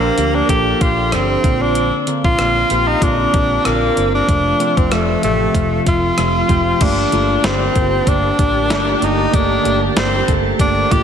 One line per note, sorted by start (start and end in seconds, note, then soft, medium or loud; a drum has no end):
0.00 0.17 F3 medium
0.00 0.18 A#3 medium
0.00 0.37 A#3 medium
0.00 0.18 D4 medium
0.00 0.19 G4 medium
0.17 0.40 D2 medium
0.17 0.45 F3 medium
0.17 0.45 A#3 medium
0.17 0.45 D4 medium
0.17 0.45 G4 medium
0.17 closed hi-hat medium
0.35 0.50 D4 medium
0.49 0.72 A#1 medium
0.49 0.76 F3 medium
0.49 0.77 A#3 medium
0.49 0.77 D4 medium
0.49 0.83 G4 loud
0.49 0.77 A4 loud
0.49 kick medium
0.49 closed hi-hat medium
0.80 1.14 A#1 medium
0.80 1.08 F3 medium
0.80 1.08 A#3 medium
0.80 1.08 D4 medium
0.80 1.14 F4 loud
0.80 1.09 G4 medium
0.80 kick loud
0.80 closed hi-hat medium
1.12 1.35 G1 medium
1.12 1.40 F3 medium
1.12 1.40 A#3 medium
1.12 1.63 C4 medium
1.12 1.40 D4 medium
1.12 1.40 G4 medium
1.12 cross-stick medium
1.12 closed hi-hat medium
1.43 1.90 A#1 medium
1.43 1.98 D3 medium
1.43 1.99 A#3 medium
1.43 1.99 C4 medium
1.43 1.99 F4 medium
1.43 kick loud
1.43 closed hi-hat medium
1.62 1.97 D4 medium
1.75 closed hi-hat medium
2.07 2.34 D3 medium
2.07 2.35 A#3 medium
2.07 2.35 C4 medium
2.07 2.35 F4 medium
2.07 closed hi-hat medium
2.24 2.35 A#1 medium
2.24 2.89 F4 loud
2.24 kick medium
2.39 2.62 A#1 medium
2.39 2.66 D3 medium
2.39 2.66 A#3 medium
2.39 2.66 C4 medium
2.39 2.67 F4 medium
2.39 cross-stick loud
2.39 closed hi-hat medium
2.70 2.93 A#1 medium
2.70 2.98 D3 medium
2.70 2.98 A#3 medium
2.70 2.98 C4 medium
2.70 2.98 G4 medium
2.70 closed hi-hat medium
2.88 3.04 D#4 medium
3.01 3.25 A#1 medium
3.01 3.29 D3 medium
3.01 3.29 A#3 medium
3.01 3.30 C4 medium
3.01 3.67 D4 medium
3.01 3.30 F4 medium
3.01 kick medium
3.01 closed hi-hat medium
3.33 3.56 A#1 medium
3.33 3.61 D3 medium
3.33 3.61 A#3 medium
3.33 3.61 C4 medium
3.33 3.61 G4 medium
3.33 kick loud
3.33 closed hi-hat medium
3.65 3.88 A#1 medium
3.65 3.92 D3 medium
3.65 3.92 A#3 medium
3.65 4.14 A#3 medium
3.65 3.93 C4 medium
3.65 3.93 F4 medium
3.65 cross-stick medium
3.65 closed hi-hat medium
3.96 4.20 G1 medium
3.96 4.24 D3 medium
3.96 4.24 A#3 medium
3.96 4.24 C4 medium
3.96 4.24 F4 medium
3.96 closed hi-hat medium
4.15 4.79 D4 medium
4.27 4.51 F1 medium
4.27 4.55 C3 medium
4.27 4.55 F3 medium
4.27 4.56 A3 medium
4.27 4.56 F4 medium
4.27 kick loud
4.27 closed hi-hat medium
4.59 4.87 C3 medium
4.59 4.87 F3 medium
4.59 4.87 A3 medium
4.59 4.87 C4 medium
4.59 closed hi-hat medium
4.77 4.88 F1 medium
4.77 4.94 C4 medium
4.77 kick medium
4.77 closed hi-hat soft
4.91 5.14 F1 medium
4.91 5.19 C3 medium
4.91 5.19 F3 medium
4.91 5.19 A3 medium
4.91 5.23 A3 medium
4.91 5.19 F4 medium
4.91 cross-stick loud
4.91 closed hi-hat medium
5.22 5.46 A1 medium
5.22 5.50 C3 medium
5.22 5.50 F3 medium
5.22 5.50 A3 medium
5.22 5.83 A3 medium
5.22 5.51 G4 medium
5.22 closed hi-hat medium
5.54 5.77 F1 medium
5.54 5.82 C3 medium
5.54 5.82 F3 medium
5.54 5.82 A3 medium
5.54 5.82 F4 medium
5.54 kick medium
5.54 closed hi-hat medium
5.86 6.09 F1 medium
5.86 6.13 C3 medium
5.86 6.13 F3 medium
5.86 6.14 A3 medium
5.86 6.14 F4 medium
5.86 6.84 F4 medium
5.86 kick loud
5.86 closed hi-hat medium
6.17 6.41 F1 medium
6.17 6.45 C3 medium
6.17 6.45 F3 medium
6.17 6.45 A3 medium
6.17 6.45 F4 medium
6.17 cross-stick medium
6.17 closed hi-hat loud
6.49 6.72 F1 medium
6.49 6.76 C3 medium
6.49 6.77 F3 medium
6.49 6.77 A3 medium
6.49 6.77 G4 medium
6.49 kick medium
6.49 closed hi-hat medium
6.80 7.04 G1 medium
6.80 7.08 D3 medium
6.80 7.08 A3 medium
6.80 7.08 A#3 medium
6.80 7.47 D4 medium
6.80 11.03 G4 medium
6.80 7.09 G4 medium
6.80 11.03 A#4 medium
6.80 11.03 A5 medium
6.80 kick loud
6.80 closed hi-hat medium
6.80 crash medium
7.12 7.35 G1 medium
7.12 7.40 D3 medium
7.12 7.40 A3 medium
7.12 7.40 A#3 medium
7.12 7.40 F4 medium
7.12 closed hi-hat medium
7.44 7.67 G1 medium
7.44 7.71 D3 medium
7.44 7.71 A3 medium
7.44 7.72 A#3 medium
7.44 8.10 C4 medium
7.44 7.72 G4 medium
7.44 snare loud
7.44 closed hi-hat medium
7.75 7.99 G1 medium
7.75 8.03 D3 medium
7.75 8.03 A3 medium
7.75 8.03 A#3 medium
7.75 8.04 G4 medium
7.75 kick medium
7.75 closed hi-hat medium
8.07 8.30 G1 medium
8.07 8.34 D3 medium
8.07 8.35 A3 medium
8.07 8.35 A#3 medium
8.07 9.05 D4 loud
8.07 8.35 G4 medium
8.07 kick medium
8.07 closed hi-hat medium
8.38 8.71 A1 medium
8.38 8.66 D3 medium
8.38 8.66 A3 medium
8.38 8.66 A#3 medium
8.38 8.66 G4 medium
8.38 kick loud
8.38 closed hi-hat medium
8.70 8.93 G1 loud
8.70 8.98 D3 medium
8.70 8.98 A3 medium
8.70 8.98 A#3 medium
8.70 8.98 G4 loud
8.70 snare loud
8.70 closed hi-hat loud
9.02 9.25 G1 medium
9.02 9.29 D3 medium
9.02 9.29 A3 medium
9.02 9.29 A#3 medium
9.02 9.37 D#4 medium
9.02 9.30 G4 medium
9.02 closed hi-hat medium
9.32 9.56 G1 loud
9.32 9.60 D3 medium
9.32 9.61 A3 medium
9.32 9.61 A#3 medium
9.32 9.81 D4 loud
9.32 9.61 G4 medium
9.32 kick loud
9.32 closed hi-hat medium
9.64 9.88 G1 medium
9.64 9.92 D3 medium
9.64 9.92 A3 medium
9.64 9.92 A#3 medium
9.64 9.93 G4 medium
9.64 closed hi-hat medium
9.96 10.20 G1 loud
9.96 10.24 D3 medium
9.96 10.24 A3 medium
9.96 10.24 A#3 medium
9.96 10.32 C4 loud
9.96 10.24 G4 medium
9.96 snare loud
9.96 closed hi-hat medium
10.28 10.51 G1 medium
10.28 10.55 D3 medium
10.28 10.55 A3 medium
10.28 10.56 A#3 medium
10.28 10.56 A4 medium
10.28 kick medium
10.28 closed hi-hat medium
10.59 10.82 G1 loud
10.59 10.87 D3 medium
10.59 10.87 A3 medium
10.59 10.87 A#3 medium
10.59 10.94 D4 loud
10.59 10.87 G4 medium
10.59 kick medium
10.59 closed hi-hat medium
10.91 11.03 A1 medium
10.91 11.03 D3 medium
10.91 11.03 A3 medium
10.91 11.03 A#3 medium
10.91 11.03 F4 medium
10.91 11.03 G4 loud
10.91 kick loud
10.91 closed hi-hat medium